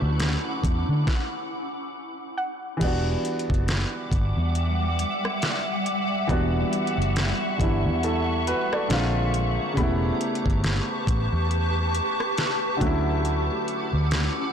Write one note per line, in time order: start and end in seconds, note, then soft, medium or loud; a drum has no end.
0.00 0.36 D2 medium
0.00 1.01 D3 medium
0.00 1.02 F#3 medium
0.00 1.04 A3 medium
0.00 1.05 C#4 medium
0.00 1.05 E4 medium
0.00 1.06 E4 medium
0.00 1.09 A4 medium
0.00 0.34 F#5 medium
0.00 1.05 F#5 medium
0.00 1.05 D6 medium
0.20 snare loud
0.20 closed hi-hat medium
0.64 0.83 E2 loud
0.64 kick medium
0.64 closed hi-hat medium
0.89 1.03 D3 loud
1.07 kick loud
1.07 snare medium
2.38 3.21 F#5 medium
2.77 6.23 E3 medium
2.77 6.24 G3 medium
2.81 3.15 E1 loud
2.81 8.86 G3 medium
2.81 6.25 B3 medium
2.81 6.27 D4 medium
2.81 8.86 E5 medium
2.81 8.86 F#5 medium
2.81 6.26 D6 medium
2.81 kick loud
2.81 closed hi-hat medium
2.81 crash loud
2.87 6.28 F#4 medium
3.25 closed hi-hat medium
3.39 closed hi-hat medium
3.50 3.83 F#1 medium
3.50 kick medium
3.54 closed hi-hat soft
3.68 snare loud
3.68 closed hi-hat medium
4.12 4.31 G1 medium
4.12 kick loud
4.12 closed hi-hat medium
4.37 5.04 E2 loud
4.55 closed hi-hat medium
4.99 closed hi-hat medium
5.25 cross-stick loud
5.42 snare loud
5.42 closed hi-hat medium
5.86 closed hi-hat medium
6.27 6.63 E1 loud
6.27 7.56 E3 medium
6.27 7.57 G3 medium
6.27 7.59 B3 medium
6.27 7.60 D4 medium
6.27 8.88 C#6 loud
6.27 kick loud
6.27 closed hi-hat medium
6.32 7.61 F#4 medium
6.73 closed hi-hat medium
6.87 closed hi-hat medium
6.98 7.31 F#1 medium
6.98 closed hi-hat soft
7.16 snare loud
7.16 closed hi-hat medium
7.58 7.87 G1 loud
7.58 8.89 E3 medium
7.58 8.90 G3 medium
7.58 8.90 B3 medium
7.58 8.91 D4 medium
7.58 kick medium
7.58 closed hi-hat medium
7.63 8.03 E4 medium
7.85 8.52 E2 loud
8.03 8.45 E4 medium
8.03 8.45 A4 medium
8.03 closed hi-hat medium
8.47 8.71 F#4 medium
8.47 8.71 B4 medium
8.47 closed hi-hat medium
8.73 9.14 A4 medium
8.73 9.14 D5 medium
8.73 cross-stick loud
8.89 9.57 A#1 loud
8.89 9.76 D3 medium
8.89 9.77 G#3 medium
8.89 9.77 A#3 medium
8.89 9.78 C4 medium
8.89 snare loud
8.89 closed hi-hat medium
8.93 9.79 F4 medium
9.34 closed hi-hat medium
9.73 12.75 C#3 medium
9.73 12.77 G3 medium
9.73 12.78 A5 medium
9.73 11.21 B5 medium
9.77 10.11 E1 loud
9.77 12.78 A3 medium
9.77 12.79 B3 medium
9.77 12.78 G4 medium
9.77 12.78 B4 medium
9.77 12.78 C#6 medium
9.77 kick loud
9.77 closed hi-hat medium
9.83 12.80 E4 medium
10.21 closed hi-hat medium
10.35 closed hi-hat medium
10.46 10.79 G1 loud
10.46 kick loud
10.50 closed hi-hat soft
10.64 snare loud
10.64 closed hi-hat medium
11.07 11.27 A1 medium
11.07 kick loud
11.07 closed hi-hat medium
11.33 12.00 E2 loud
11.51 closed hi-hat medium
11.95 closed hi-hat medium
12.20 cross-stick loud
12.38 snare loud
12.38 closed hi-hat medium
12.77 14.53 D3 medium
12.77 14.53 F#3 medium
12.81 13.48 D2 loud
12.81 14.53 A3 medium
12.81 14.53 C#4 medium
12.81 14.53 E4 medium
12.81 14.53 F#5 medium
12.81 14.26 F#5 medium
12.81 14.53 D6 medium
12.81 kick loud
12.81 closed hi-hat medium
12.87 14.53 E4 medium
13.25 closed hi-hat medium
13.68 closed hi-hat medium
13.93 14.27 D2 loud
14.11 snare loud
14.11 closed hi-hat medium